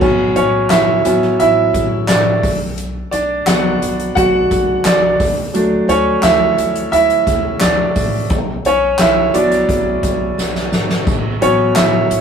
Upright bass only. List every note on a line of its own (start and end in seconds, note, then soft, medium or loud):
0.02 0.30 A1 medium
0.36 0.64 A1 loud
0.70 0.99 A1 medium
1.05 1.34 A1 medium
1.41 1.69 A1 loud
1.75 2.03 A1 loud
2.09 2.44 A1 loud
2.44 3.00 B1 loud
3.13 3.41 B1 medium
3.46 3.75 B1 medium
3.82 4.10 B1 loud
4.16 4.45 B1 loud
4.51 4.80 B1 loud
4.85 5.14 B1 loud
5.20 5.77 D2 loud
5.88 6.17 D2 loud
6.22 6.51 D2 loud
6.57 6.86 D2 medium
6.91 7.20 D2 loud
7.27 7.55 D2 medium
7.62 7.90 D2 loud
7.96 8.24 A1 loud
8.30 8.59 B1 loud
8.66 8.94 B1 medium
9.00 9.28 B1 loud
9.35 9.63 B1 loud
9.69 9.97 B1 loud
10.03 10.32 B1 loud
10.38 10.66 B1 loud
10.72 11.01 G#1 loud
11.07 11.35 A1 medium
11.42 11.70 A1 loud
11.76 12.05 A1 medium
12.10 12.21 A1 loud